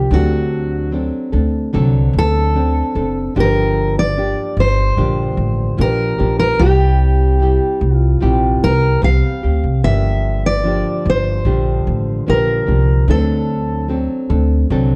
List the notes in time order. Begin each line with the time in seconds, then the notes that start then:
Already playing: D3 F3 A#3 D4 G4
0.11 D2 D3 F#3 C4 D4 F#4 A4
0.91 F#3 C4 D4 A4
1.32 D2 C4 D4 A4
1.73 C2 D3 F#3 C4 D4 A4
2.13 D2
2.19 A4
2.54 F#3 C4 D4 A4
2.95 F#1 C4 D4 A4
3.35 G1 G2 D3 F3 A#3 D4 G4
3.40 A#4
3.99 D5
4.16 F3 A#3 D4 G4
4.57 G1 C5
4.96 A#1 G2 D3 F3 A#3 D4 G4
5.37 A1
5.77 A#1 F3 A#3 D4 G4 A#4
6.18 A#1 F3 A#3 D4 G4
6.39 A#4
6.59 C2 C3 G3 C4 E4 G4
7.40 G3 C4 E4 G4
7.81 C2
7.95 F4
8.21 A#1 C3 G3 C4 E4 G4
8.63 C2 A#4
9.02 C2 G3 C4 G4 F5
9.43 D2 C4 G4
9.64 C2
9.83 G1 G2 D3 F3 A#3 D4 G4 E5
10.46 D5
10.63 F3 A#3 D4 G4
11.05 G1
11.10 C5
11.45 A#1 G2 D3 F3 A#3 D4 G4
11.87 A1
12.27 A#1 F3 A#3 D4 G4 A#4
12.67 C2 F3 A#3 D4 G4
13.08 D2 D3 F#3 C4 D4 A4
13.88 F#3 C4 D4 A4
14.30 D2 C4 D4 A4
14.70 C2 D3 F#3 C4 D4 A4